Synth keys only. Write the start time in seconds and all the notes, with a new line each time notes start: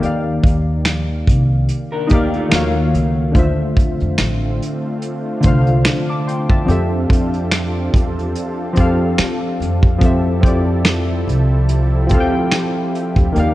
0.00 D#3 A#3 G4 D5
0.05 F5
2.07 A#3 D#4 G4
2.12 D5 F5
2.49 D#3 A#3 F#4
2.54 C#5 F5
3.31 D3 A3 F4
3.37 C5 E5
5.40 D3 A3 F4
5.46 C5 F5
6.09 A5 D6
6.27 G5 C6
6.50 E5 A5
6.65 F3 C4 G4
6.70 A4 E5
8.73 F3 C4 G4
8.79 A4 F5
9.98 F3 C4 G4
10.04 A4 E5
10.41 F3 C4 G4
10.46 A4 D5
12.07 F3 C4 G4
12.12 A4 F5
12.20 G5
13.32 D#3 A#3 G4
13.37 D5 F5